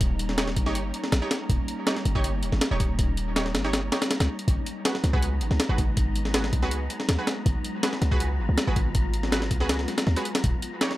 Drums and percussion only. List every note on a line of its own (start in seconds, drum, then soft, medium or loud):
0.01 kick loud
0.01 closed hi-hat medium
0.19 closed hi-hat medium
0.29 snare medium
0.38 snare loud
0.38 closed hi-hat medium
0.48 snare medium
0.56 kick loud
0.56 closed hi-hat medium
0.66 snare soft
0.75 closed hi-hat medium
0.94 closed hi-hat medium
1.04 snare medium
1.12 snare loud
1.12 closed hi-hat medium
1.31 snare loud
1.31 closed hi-hat medium
1.50 kick loud
1.50 closed hi-hat medium
1.68 closed hi-hat medium
1.87 snare loud
1.87 closed hi-hat medium
1.97 snare medium
2.05 closed hi-hat medium
2.15 kick medium
2.24 closed hi-hat medium
2.43 closed hi-hat medium
2.52 snare soft
2.61 snare loud
2.61 closed hi-hat medium
2.80 kick loud
2.80 closed hi-hat medium
2.99 kick loud
2.99 closed hi-hat medium
3.17 closed hi-hat medium
3.36 snare loud
3.36 closed hi-hat medium
3.46 snare medium
3.55 snare loud
3.55 closed hi-hat medium
3.65 snare soft
3.73 snare loud
3.73 closed hi-hat medium
3.92 snare loud
3.92 closed hi-hat medium
4.02 snare loud
4.02 closed hi-hat medium
4.11 snare loud
4.11 closed hi-hat medium
4.20 snare loud
4.20 closed hi-hat medium
4.39 closed hi-hat medium
4.48 kick loud
4.48 closed hi-hat medium
4.66 closed hi-hat medium
4.85 snare loud
4.85 closed hi-hat medium
4.95 snare medium
5.04 snare soft
5.04 closed hi-hat medium
5.13 kick loud
5.22 closed hi-hat medium
5.41 closed hi-hat medium
5.51 snare soft
5.60 snare loud
5.60 closed hi-hat medium
5.78 kick loud
5.78 closed hi-hat medium
5.97 kick loud
5.97 closed hi-hat medium
6.16 closed hi-hat medium
6.25 snare medium
6.34 snare loud
6.34 closed hi-hat medium
6.44 snare medium
6.53 kick loud
6.53 closed hi-hat medium
6.62 snare soft
6.71 closed hi-hat medium
6.90 closed hi-hat medium
7.00 snare medium
7.09 snare loud
7.09 closed hi-hat medium
7.27 snare loud
7.27 closed hi-hat medium
7.46 kick loud
7.46 closed hi-hat medium
7.65 closed hi-hat medium
7.83 snare loud
7.83 closed hi-hat medium
7.93 snare medium
8.02 snare soft
8.02 closed hi-hat medium
8.11 kick medium
8.20 closed hi-hat medium
8.58 snare loud
8.58 closed hi-hat medium
8.76 kick loud
8.76 closed hi-hat medium
8.95 kick loud
8.95 closed hi-hat medium
9.14 closed hi-hat medium
9.23 snare medium
9.32 snare loud
9.32 closed hi-hat medium
9.42 snare medium
9.51 kick loud
9.51 closed hi-hat medium
9.60 snare soft
9.69 snare loud
9.69 closed hi-hat medium
9.79 snare soft
9.88 snare soft
9.88 closed hi-hat medium
9.98 snare loud
9.98 closed hi-hat medium
10.07 snare medium
10.16 snare soft
10.16 closed hi-hat medium
10.25 closed hi-hat medium
10.35 snare loud
10.35 closed hi-hat medium
10.44 kick loud
10.44 closed hi-hat medium
10.62 closed hi-hat medium
10.81 snare loud
10.81 closed hi-hat medium
10.91 snare medium